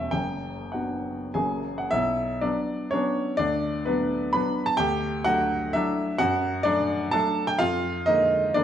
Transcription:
0.00 0.11 E1 medium
0.00 0.10 E2 medium
0.00 0.14 G3 soft
0.00 0.15 C#4 soft
0.00 0.12 E5 medium
0.00 0.11 G5 medium
0.11 1.31 F#1 medium
0.11 1.31 F#2 medium
0.11 0.73 G5 loud
0.72 1.31 B3 soft
0.72 1.31 D4 soft
0.72 1.31 F#4 soft
0.72 1.64 F#5 medium
1.34 1.90 F#1 medium
1.34 1.90 F#2 medium
1.34 1.88 A#3 soft
1.34 1.89 C#4 soft
1.34 1.89 F#4 soft
1.34 1.76 G#4 medium
1.34 1.78 G#5 medium
1.78 1.91 F#5 medium
1.91 2.42 B1 medium
1.91 2.40 E4 medium
1.91 2.43 E5 loud
2.41 2.88 F#3 medium
2.41 2.89 B3 soft
2.41 2.89 D4 medium
2.41 2.92 D5 medium
2.91 3.35 F#3 medium
2.91 3.35 B3 medium
2.91 3.35 C#4 medium
2.91 3.35 D4 medium
2.91 3.37 C#5 loud
3.37 3.84 D2 medium
3.37 3.83 D4 medium
3.37 3.85 D5 loud
3.85 4.30 F#3 medium
3.85 4.30 B3 medium
3.85 4.30 D4 medium
3.85 4.33 B4 medium
4.33 4.73 F#3 medium
4.33 4.74 B3 medium
4.33 4.74 D4 medium
4.33 4.65 B4 medium
4.33 4.66 B5 loud
4.66 4.77 A5 loud
4.77 5.24 D2 medium
4.77 5.22 G4 loud
4.77 5.24 G5 loud
5.24 5.71 F#3 medium
5.24 5.71 A3 medium
5.24 5.71 D4 medium
5.24 5.71 F#4 medium
5.24 5.74 F#5 loud
5.73 6.16 F#3 medium
5.73 6.16 A3 medium
5.73 6.16 D4 medium
5.73 6.16 E4 medium
5.73 6.19 E5 loud
6.18 6.65 F#2 medium
6.18 6.62 F#4 medium
6.18 6.65 F#5 loud
6.63 7.09 F#3 medium
6.63 7.09 A3 medium
6.63 7.10 D4 loud
6.63 7.12 D5 loud
7.11 7.57 F#3 medium
7.11 7.57 A3 medium
7.11 7.57 D4 medium
7.11 7.46 A4 medium
7.11 7.48 A5 loud
7.47 7.59 G5 loud
7.59 8.05 F2 medium
7.59 8.03 F4 loud
7.59 8.06 F5 loud
8.06 8.51 D3 medium
8.06 8.52 G#3 medium
8.06 8.52 A#3 medium
8.06 8.52 D#4 medium
8.06 8.55 D#5 loud
8.54 8.64 D3 medium
8.54 8.64 G#3 medium
8.54 8.64 A#3 medium
8.54 8.64 D4 medium
8.54 8.64 D5 loud

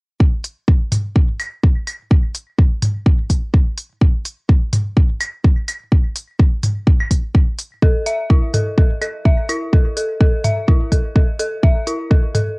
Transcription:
0.20 kick loud
0.44 open hi-hat medium
0.68 kick loud
0.92 mid tom medium
0.92 open hi-hat medium
1.16 kick loud
1.39 open hi-hat medium
1.39 claves medium
1.63 kick loud
1.87 open hi-hat medium
1.87 claves soft
2.11 kick loud
2.35 open hi-hat medium
2.58 kick loud
2.82 mid tom medium
2.82 open hi-hat medium
3.06 kick loud
3.30 kick medium
3.30 open hi-hat medium
3.54 kick loud
3.78 open hi-hat medium
4.01 kick loud
4.25 open hi-hat medium
4.49 kick loud
4.73 mid tom medium
4.73 open hi-hat medium
4.97 kick loud
5.20 open hi-hat medium
5.20 claves medium
5.44 kick loud
5.68 open hi-hat medium
5.68 claves soft
5.92 kick loud
6.16 open hi-hat medium
6.40 kick loud
6.63 mid tom medium
6.63 open hi-hat medium
6.87 kick loud
7.01 claves medium
7.11 kick medium
7.11 open hi-hat medium
7.35 kick loud
7.59 open hi-hat medium
7.82 7.88 A4 medium
7.82 kick loud
8.06 8.12 E5 loud
8.06 open hi-hat medium
8.30 8.38 E4 loud
8.30 kick loud
8.54 8.59 A4 medium
8.54 mid tom medium
8.54 open hi-hat medium
8.78 8.83 A4 medium
8.78 kick loud
9.01 9.07 A4 medium
9.01 open hi-hat medium
9.01 claves medium
9.25 9.31 E5 medium
9.25 kick loud
9.49 9.57 E4 medium
9.49 open hi-hat medium
9.49 claves soft
9.73 9.78 A4 medium
9.73 kick loud
9.97 10.02 A4 medium
9.97 open hi-hat medium
10.20 10.26 A4 medium
10.20 kick loud
10.44 10.50 E5 medium
10.44 mid tom medium
10.44 open hi-hat medium
10.68 10.76 E4 loud
10.68 kick loud
10.92 10.97 A4 medium
10.92 kick medium
10.92 open hi-hat medium
11.16 11.21 A4 medium
11.16 kick loud
11.39 11.45 A4 medium
11.39 open hi-hat medium
11.63 11.69 E5 loud
11.63 kick loud
11.87 11.95 E4 loud
11.87 open hi-hat medium
12.11 12.16 A4 medium
12.11 kick loud
12.35 12.40 A4 medium
12.35 mid tom medium
12.35 open hi-hat medium

